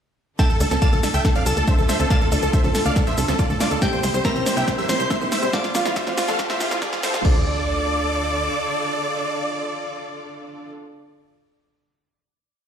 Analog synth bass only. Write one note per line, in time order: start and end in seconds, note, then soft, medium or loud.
0.60 0.67 D2 medium
0.71 0.78 D2 medium
0.93 0.99 D2 medium
1.14 1.21 D2 medium
1.46 1.53 C2 medium
1.57 1.64 D2 medium
1.78 1.85 D2 medium
2.00 2.06 D2 medium
2.32 2.38 D2 medium
2.43 2.49 D2 medium
2.64 2.71 D2 medium
2.86 2.92 D2 medium
3.18 3.24 C2 loud
3.28 3.35 D2 medium
3.50 3.56 D2 medium
3.71 3.78 D2 medium
4.03 4.10 C2 loud
4.14 4.21 C2 medium
4.35 4.42 C2 medium
4.57 4.63 C2 medium
4.89 4.96 A#1 medium
5.00 5.06 C2 medium
5.21 5.28 C2 medium
5.43 5.49 C2 medium
5.75 5.81 F2 loud
5.85 5.92 F2 medium
6.07 6.13 F2 medium
6.28 6.35 F2 medium
6.60 6.67 C2 medium
6.71 6.78 F2 medium
6.93 6.99 F2 medium
7.14 7.21 F2 medium
7.25 8.49 D2 loud